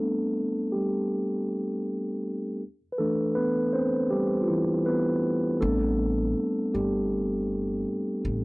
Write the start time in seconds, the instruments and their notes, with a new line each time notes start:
Already playing: tine electric piano G3 A3 B3 C4 D4 A4
0.72 tine electric piano G3 G4
2.92 tine electric piano B4
2.98 tine electric piano E3 A3 D4 A4
3.35 tine electric piano B3 B4
3.73 tine electric piano C4 C5
4.10 tine electric piano G3 G4
4.42 tine electric piano F4
4.48 tine electric piano E3 E4
4.86 tine electric piano B3 B4
5.61 upright bass A1, tine electric piano G3 A3 B3 C4 D4 A4
6.74 upright bass G1, tine electric piano G3 G4
8.25 upright bass A1